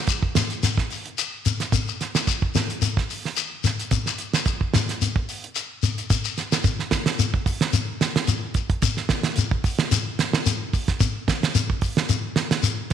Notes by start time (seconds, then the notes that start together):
0.07 kick, closed hi-hat, shekere
0.23 kick
0.35 snare, closed hi-hat, shekere
0.50 closed hi-hat, shekere
0.63 snare, closed hi-hat, shekere
0.78 kick, snare
0.90 open hi-hat, shekere
1.06 closed hi-hat
1.18 closed hi-hat, shekere
1.45 closed hi-hat, shekere
1.60 snare, closed hi-hat, shekere
1.72 kick, closed hi-hat, shekere
1.88 shekere
2.01 snare, closed hi-hat, shekere
2.15 snare, closed hi-hat, shekere
2.27 kick, closed hi-hat, shekere
2.42 kick
2.55 snare, closed hi-hat, shekere
2.70 closed hi-hat, shekere
2.82 closed hi-hat, shekere
2.97 kick, snare
3.10 open hi-hat, shekere
3.25 snare
3.37 closed hi-hat, shekere
3.64 snare, closed hi-hat, shekere
3.79 closed hi-hat, shekere
3.91 kick, closed hi-hat, shekere
4.06 snare, shekere
4.18 closed hi-hat, shekere
4.34 snare, closed hi-hat, shekere
4.46 kick, closed hi-hat, shekere
4.61 kick
4.74 snare, closed hi-hat, shekere
4.89 snare, closed hi-hat, shekere
5.02 closed hi-hat, shekere
5.16 kick
5.29 open hi-hat, shekere
5.44 closed hi-hat
5.55 closed hi-hat, shekere
5.83 closed hi-hat, shekere
5.98 closed hi-hat, shekere
6.10 kick, closed hi-hat, shekere
6.25 shekere
6.38 snare, closed hi-hat, shekere
6.52 snare, closed hi-hat, shekere
6.64 kick, closed hi-hat, shekere
6.79 snare
6.91 kick, snare, closed hi-hat, shekere
7.06 snare, closed hi-hat
7.19 closed hi-hat, shekere
7.34 kick
7.46 kick, open hi-hat, shekere
7.61 snare, closed hi-hat
7.73 closed hi-hat, shekere
8.01 snare, closed hi-hat, shekere
8.16 snare, closed hi-hat
8.27 closed hi-hat, shekere
8.54 kick, closed hi-hat, shekere
8.70 kick, closed hi-hat
8.82 kick, closed hi-hat, shekere
8.97 snare
9.09 kick, snare, closed hi-hat, shekere
9.23 snare, closed hi-hat
9.36 closed hi-hat, shekere
9.51 kick
9.64 kick, open hi-hat, shekere
9.79 snare, closed hi-hat
9.91 snare, closed hi-hat, shekere
10.19 snare, closed hi-hat, shekere
10.33 snare
10.46 closed hi-hat, shekere
10.73 kick, open hi-hat, shekere
10.88 kick, snare, closed hi-hat
11.00 kick, closed hi-hat, shekere
11.28 kick, snare, closed hi-hat, shekere
11.43 snare, closed hi-hat
11.55 closed hi-hat, shekere
11.70 kick
11.81 kick, open hi-hat, shekere
11.97 snare, closed hi-hat
12.09 closed hi-hat, shekere
12.36 snare, closed hi-hat, shekere
12.51 snare, closed hi-hat
12.63 closed hi-hat, shekere